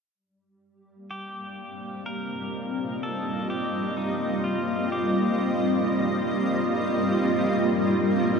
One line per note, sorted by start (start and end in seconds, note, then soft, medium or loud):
0.14 8.40 G3 medium
0.67 8.40 A#3 medium
0.89 8.40 C4 medium
1.11 2.06 G4 medium
1.69 8.40 D#5 medium
1.97 8.40 F4 medium
2.06 3.03 A#4 medium
3.03 3.50 A4 medium
3.50 3.98 G4 medium
3.97 4.45 D#4 medium
4.44 4.92 F4 medium
4.92 7.26 G4 medium